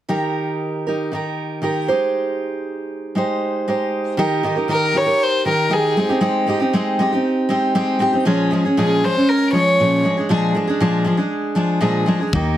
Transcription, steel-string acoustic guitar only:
0.09 1.11 D#3 medium
0.09 0.88 D#4 medium
0.09 0.88 G4 medium
0.09 0.85 A#4 medium
0.87 1.12 D#4 soft
0.87 1.12 G4 soft
0.87 1.12 A#4 soft
1.12 1.61 D#3 soft
1.12 1.62 D#4 soft
1.12 1.63 G4 soft
1.12 1.63 A#4 medium
1.62 1.88 D#3 soft
1.62 1.88 D#4 medium
1.62 1.88 G4 soft
1.62 1.88 A#4 medium
1.88 3.14 G#3 soft
1.88 3.16 D#4 soft
1.88 3.17 G4 medium
1.88 3.16 C5 medium
3.15 3.67 G#3 soft
3.15 3.68 D#4 medium
3.15 3.68 G4 soft
3.15 3.68 C5 medium
3.68 4.17 G#3 soft
3.68 4.18 D#4 soft
3.68 4.18 G4 medium
3.68 4.19 C5 soft
4.17 4.42 D#3 medium
4.17 4.43 D#4 medium
4.17 4.44 G4 medium
4.17 4.44 A#4 medium
4.43 4.56 D#3 medium
4.43 4.57 D#4 medium
4.43 4.55 G4 medium
4.43 4.54 A#4 medium
4.56 4.68 D#4 soft
4.56 4.69 G4 soft
4.56 4.69 A#4 soft
4.68 4.93 D#3 medium
4.68 4.94 D#4 medium
4.68 4.94 G4 medium
4.68 4.95 A#4 medium
4.94 5.07 D#3 soft
4.94 5.07 D#4 medium
4.94 5.06 G4 medium
4.94 5.05 A#4 medium
5.06 5.45 D#4 soft
5.06 5.45 G4 soft
5.06 5.45 A#4 soft
5.45 5.69 D#3 medium
5.45 5.69 D#4 medium
5.45 5.70 G4 medium
5.45 5.70 A#4 medium
5.70 5.96 D#3 medium
5.70 5.96 D#4 medium
5.70 5.96 G4 medium
5.70 5.97 A#4 medium
5.97 6.09 G#3 medium
5.97 6.10 C4 medium
5.97 6.09 D#4 medium
5.97 6.08 G4 medium
6.09 6.20 C4 soft
6.09 6.20 D#4 soft
6.09 6.21 G4 soft
6.21 6.45 G#3 medium
6.21 6.46 C4 medium
6.21 6.47 D#4 medium
6.21 6.48 G4 medium
6.47 6.60 G#3 medium
6.47 6.60 C4 medium
6.47 6.60 D#4 medium
6.47 6.58 G4 medium
6.60 6.73 C4 soft
6.60 6.73 D#4 medium
6.60 6.73 G4 medium
6.73 6.98 G#3 medium
6.73 6.99 C4 medium
6.73 6.99 D#4 medium
6.73 7.00 G4 medium
6.99 7.11 G#3 medium
6.99 7.12 C4 medium
6.99 7.12 D#4 medium
6.99 7.11 G4 medium
7.12 7.49 C4 soft
7.12 7.50 D#4 soft
7.12 7.50 G4 medium
7.49 7.74 G#3 medium
7.49 7.74 C4 medium
7.49 7.75 D#4 medium
7.49 7.74 G4 medium
7.75 7.98 G#3 medium
7.75 7.99 C4 medium
7.75 8.00 D#4 medium
7.75 8.01 G4 medium
7.99 8.12 G#3 medium
7.99 8.13 C4 medium
7.99 8.12 D#4 medium
7.99 8.11 G4 medium
8.13 8.25 C4 soft
8.13 8.26 D#4 soft
8.13 8.25 G4 medium
8.25 8.51 A#2 medium
8.25 8.49 F3 medium
8.25 8.51 G#3 medium
8.25 8.51 C#4 medium
8.25 8.52 G#4 medium
8.51 8.64 F3 medium
8.51 8.64 G#3 medium
8.51 8.65 C#4 medium
8.51 8.64 G#4 medium
8.65 8.76 G#3 soft
8.65 8.77 C#4 soft
8.65 8.77 G#4 soft
8.77 9.02 A#2 medium
8.77 9.02 F3 medium
8.77 9.03 G#3 medium
8.77 9.03 C#4 medium
8.77 9.03 G#4 medium
9.04 9.16 F3 medium
9.04 9.16 G#3 soft
9.04 9.16 C#4 medium
9.04 9.15 G#4 medium
9.16 9.53 G#3 soft
9.16 9.53 C#4 soft
9.16 9.53 G#4 soft
9.52 9.78 F3 medium
9.52 9.79 G#3 soft
9.52 9.79 C#4 medium
9.52 9.80 G#4 medium
9.79 10.04 A#2 medium
9.79 10.02 F3 medium
9.79 10.04 G#3 medium
9.79 10.05 C#4 medium
9.79 10.04 G#4 medium
10.03 10.16 F3 medium
10.03 10.17 G#3 medium
10.03 10.17 D4 medium
10.03 10.16 G#4 medium
10.17 10.29 G#3 soft
10.17 10.30 D4 soft
10.17 10.30 G#4 medium
10.29 10.55 A#2 medium
10.29 10.53 F3 medium
10.29 10.54 G#3 medium
10.29 10.55 D4 medium
10.29 10.56 G#4 medium
10.54 10.67 F3 medium
10.54 10.68 G#3 medium
10.54 10.68 D4 medium
10.54 10.66 G#4 medium
10.67 10.80 G#3 soft
10.67 10.80 D4 medium
10.67 10.80 G#4 medium
10.80 11.06 A#2 medium
10.80 11.03 F3 medium
10.80 11.04 G#3 medium
10.80 11.05 D4 medium
10.80 11.06 G#4 medium
11.05 11.18 F3 medium
11.05 11.18 G#3 medium
11.05 11.17 D4 medium
11.05 11.16 G#4 medium
11.17 11.55 G#3 soft
11.17 11.55 D4 soft
11.17 11.56 G#4 medium
11.55 11.80 F3 medium
11.55 11.80 G#3 medium
11.55 11.81 D4 medium
11.55 11.81 G#4 medium
11.80 12.07 A#2 medium
11.80 12.05 F3 medium
11.80 12.06 G#3 medium
11.80 12.07 D4 medium
11.80 12.07 G#4 medium
12.06 12.20 F3 medium
12.06 12.20 G#3 medium
12.06 12.20 D4 medium
12.06 12.19 G#4 medium
12.20 12.34 G#3 soft
12.20 12.34 D4 soft
12.20 12.33 G#4 soft
12.34 12.57 D#3 medium
12.34 12.57 A#3 medium
12.34 12.57 D#4 medium
12.34 12.57 G4 medium

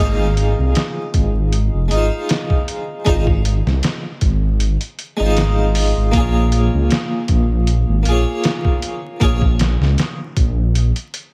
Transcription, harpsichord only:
0.00 1.85 G#3 medium
0.00 1.86 D#4 medium
0.00 1.88 F4 medium
0.00 1.89 C5 medium
1.88 3.01 G#3 medium
1.88 3.02 D#4 medium
1.94 3.03 F4 medium
1.94 3.05 C5 medium
3.05 3.22 G#3 medium
3.05 3.23 D#4 medium
3.05 3.24 F4 medium
3.09 3.24 C5 medium
5.17 6.09 G#3 medium
5.17 6.10 D#4 medium
5.22 6.11 F4 medium
5.22 6.13 C5 medium
6.12 8.01 A#3 medium
6.12 8.02 F4 medium
6.17 8.04 G#4 medium
6.17 8.05 C#5 medium
8.03 9.16 A#3 medium
8.03 9.17 F4 medium
8.09 9.19 G#4 medium
8.09 9.20 C#5 medium
9.20 9.37 A#3 medium
9.20 9.38 F4 medium
9.20 9.39 G#4 medium
9.25 9.40 C#5 medium

